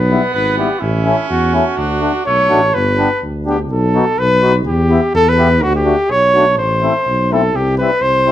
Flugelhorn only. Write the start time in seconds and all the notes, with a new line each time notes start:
Already playing: B4
0.34 B4
0.58 G4
0.79 E4
1.29 F#4
1.55 F#4
2.26 C#5
2.74 B4
3.49 G4
3.72 A4
4.19 B4
4.67 G4
5.15 A4
5.29 B4
5.62 F#4
5.76 G4
6.10 C#5
6.58 C5
7.33 A4
7.56 G4
7.78 B4
8.01 C5